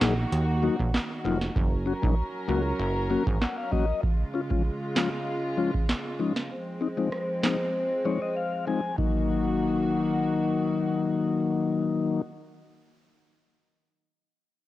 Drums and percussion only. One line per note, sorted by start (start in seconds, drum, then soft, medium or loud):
0.01 snare loud
0.01 clap medium
0.32 closed hi-hat medium
0.79 kick medium
0.94 snare loud
0.94 clap medium
0.94 closed hi-hat medium
1.41 snare medium
1.56 kick loud
2.03 kick medium
3.27 kick medium
3.42 snare loud
3.42 clap medium
3.72 kick medium
4.03 kick loud
4.51 kick medium
4.96 snare loud
4.96 clap medium
5.74 kick medium
5.89 snare loud
5.89 clap medium
6.36 snare medium
7.12 cross-stick medium
7.44 snare loud
7.44 clap medium
8.98 kick medium